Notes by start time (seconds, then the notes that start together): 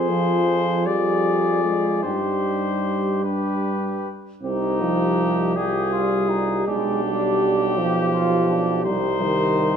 Already playing: F2 C4 F4 G#4 C5
0.09 F3
0.86 G3 F4 G#4 D5
1.64 G#3
2.03 G2 G3 D#4 G4 C5
3.24 D4 G4 B4
4.43 C2 C4 D#4 G4
4.81 F3
5.55 G3 F4 G4 G#4
5.92 F4
6.29 D#4
6.67 B1 G#3 D4 G4
7.04 G3
7.77 F3 G4
8.12 F4
8.49 D4
8.85 C2 G3 D#4 C5
9.21 D#3